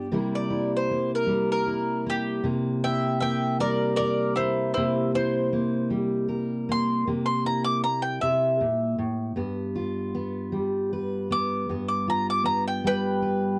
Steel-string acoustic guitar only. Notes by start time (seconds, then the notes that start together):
Already playing: G2 F4 G4
0.12 C3 G3 A#3 E4 A#4
0.50 E4
0.91 A#3
1.27 G3
1.67 E4
2.06 A#3
2.44 C3 A#3
2.84 E4
3.22 A#3
3.60 G3
4.00 A#4
4.38 A#3
4.77 C3 A#3
5.14 E4
5.53 A#3
5.90 G3
6.28 A#4
6.69 A#3
7.07 C3 A#3
7.45 E4
8.23 C3
8.61 A#2
8.98 A2
9.36 G2 B3
9.75 F4
10.15 B3
10.52 G3
10.93 B4
11.31 B3
11.69 G2 B3
12.08 F4
12.44 B3
12.84 G3
13.22 B4